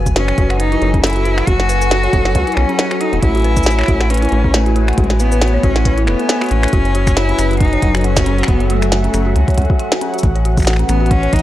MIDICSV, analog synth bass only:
0, 0, Header, 1, 2, 480
1, 0, Start_track
1, 0, Key_signature, 3, "minor"
1, 0, Tempo, 437956
1, 1616, Time_signature, 4, 2, 24, 8
1, 12517, End_track
2, 0, Start_track
2, 0, Title_t, "Analog synth bass"
2, 0, Program_c, 0, 38
2, 0, Note_on_c, 0, 30, 103
2, 360, Note_off_c, 0, 30, 0
2, 415, Note_on_c, 0, 30, 90
2, 840, Note_off_c, 0, 30, 0
2, 896, Note_on_c, 0, 30, 101
2, 1560, Note_off_c, 0, 30, 0
2, 1616, Note_on_c, 0, 30, 103
2, 2280, Note_off_c, 0, 30, 0
2, 2336, Note_on_c, 0, 30, 92
2, 2569, Note_off_c, 0, 30, 0
2, 2576, Note_on_c, 0, 37, 109
2, 2666, Note_off_c, 0, 37, 0
2, 2815, Note_on_c, 0, 35, 86
2, 2906, Note_off_c, 0, 35, 0
2, 3429, Note_on_c, 0, 28, 100
2, 3501, Note_off_c, 0, 28, 0
2, 3535, Note_on_c, 0, 33, 105
2, 4200, Note_off_c, 0, 33, 0
2, 4255, Note_on_c, 0, 33, 91
2, 4680, Note_off_c, 0, 33, 0
2, 4735, Note_on_c, 0, 33, 103
2, 5400, Note_off_c, 0, 33, 0
2, 5455, Note_on_c, 0, 33, 106
2, 6120, Note_off_c, 0, 33, 0
2, 6175, Note_on_c, 0, 33, 92
2, 6655, Note_on_c, 0, 28, 100
2, 6671, Note_off_c, 0, 33, 0
2, 6745, Note_off_c, 0, 28, 0
2, 7135, Note_on_c, 0, 33, 81
2, 7306, Note_off_c, 0, 33, 0
2, 7375, Note_on_c, 0, 30, 103
2, 8040, Note_off_c, 0, 30, 0
2, 8095, Note_on_c, 0, 30, 91
2, 8520, Note_off_c, 0, 30, 0
2, 8576, Note_on_c, 0, 30, 102
2, 9240, Note_off_c, 0, 30, 0
2, 9296, Note_on_c, 0, 30, 106
2, 9960, Note_off_c, 0, 30, 0
2, 10015, Note_on_c, 0, 30, 92
2, 10248, Note_off_c, 0, 30, 0
2, 10255, Note_on_c, 0, 37, 105
2, 10346, Note_off_c, 0, 37, 0
2, 10496, Note_on_c, 0, 37, 102
2, 10586, Note_off_c, 0, 37, 0
2, 11215, Note_on_c, 0, 33, 102
2, 11880, Note_off_c, 0, 33, 0
2, 11935, Note_on_c, 0, 33, 90
2, 12360, Note_off_c, 0, 33, 0
2, 12415, Note_on_c, 0, 33, 100
2, 12517, Note_off_c, 0, 33, 0
2, 12517, End_track
0, 0, End_of_file